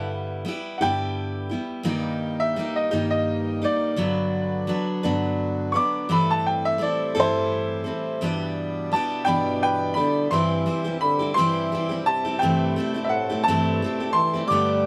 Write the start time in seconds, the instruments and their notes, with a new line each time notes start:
Already playing: steel-string acoustic guitar G2 D3 G3 B3 E4 G4
0.45 steel-string acoustic guitar G3 B3 E4 G4
0.78 steel-string acoustic guitar B3 E4 G4, upright piano F#5
0.82 steel-string acoustic guitar G2 D3 G3, upright piano G5
1.49 steel-string acoustic guitar G3 B3 E4 G4
1.83 steel-string acoustic guitar G2 D#3 G3 A#3 D#4 G4, harmonium D#3 A#3 G4
1.88 harmonium G2
2.40 upright piano E5
2.56 steel-string acoustic guitar G3 A#3 D#4 G4
2.76 upright piano D#5
2.91 steel-string acoustic guitar G2 D#3 G3 A#3 D#4 G4
3.11 upright piano D#5
3.62 steel-string acoustic guitar G3 A#3 D#4 G4, upright piano D5
3.96 steel-string acoustic guitar G2 D3 F#3 B3 D4 B4
4.01 harmonium D3 B3 F#4
4.67 steel-string acoustic guitar F#3 B3 D4 B4
5.03 steel-string acoustic guitar G2 D3 F#3 B3 D4 B4
5.72 steel-string acoustic guitar D4 B4, upright piano C#6 D6
5.76 steel-string acoustic guitar F#3 B3
6.09 steel-string acoustic guitar G2 E3 G3 C4 E4 A4, harmonium A2 G3 C4 E4, upright piano B5
6.31 upright piano A5
6.46 upright piano G5
6.65 upright piano E5
6.78 steel-string acoustic guitar G3 C4 E4 A4
6.82 upright piano D5
7.15 steel-string acoustic guitar G2 E3 G3 C4 E4 A4
7.19 upright piano E4 C5
7.84 steel-string acoustic guitar G3 C4 E4 A4
8.21 steel-string acoustic guitar G2 E3 G3 B3 D4 G4, harmonium B2 G3 D4 E4
8.92 steel-string acoustic guitar G3 B3 D4, upright piano A5
8.96 steel-string acoustic guitar G4
9.24 french horn B2, steel-string acoustic guitar B3 D4 G4, upright piano G5 B5
9.28 steel-string acoustic guitar G2 E3 G3
9.63 upright piano B4 G5
9.94 french horn D3, steel-string acoustic guitar D4 G4, upright piano B5
9.98 steel-string acoustic guitar G3 B3
10.31 steel-string acoustic guitar G2 E3 G3 C4 E4 G4, harmonium G2 C3 G3 E4 G4, french horn E3, upright piano C6
10.66 steel-string acoustic guitar G3 C4 E4 G4
10.84 steel-string acoustic guitar G3 C4 E4 G4
11.01 french horn D3, upright piano B5
11.19 steel-string acoustic guitar G3 C4 E4 G4
11.34 steel-string acoustic guitar G2 E3 G3 C4, french horn E3, upright piano C6
11.39 steel-string acoustic guitar E4 G4
11.72 steel-string acoustic guitar G3 C4 E4 G4
11.89 steel-string acoustic guitar G3 C4 E4 G4
12.03 french horn C3, upright piano A5
12.25 steel-string acoustic guitar G3 C4 E4 G4
12.38 harmonium G2 C3 A3 A4, steel-string acoustic guitar G2, french horn C3, upright piano G5
12.43 steel-string acoustic guitar E3 A3 C4 E4 G4
12.76 steel-string acoustic guitar A3 C4 E4 G4
12.94 steel-string acoustic guitar A3 C4 E4 G4
13.04 french horn G2 A2, upright piano E5
13.09 upright piano F#5
13.30 steel-string acoustic guitar A3 C4 E4 G4
13.44 french horn C3, upright piano A5
13.48 steel-string acoustic guitar G2 E3 A3 C4 E4 G4
13.82 steel-string acoustic guitar A3 C4 E4 G4
14.00 steel-string acoustic guitar A3 C4 E4 G4
14.13 french horn E3, upright piano C6
14.33 steel-string acoustic guitar A3 C4 E4 G4
14.46 steel-string acoustic guitar G2, french horn G3, upright piano D6
14.51 steel-string acoustic guitar D3 A3 B3 D4 G4, harmonium G5
14.55 harmonium D3 B3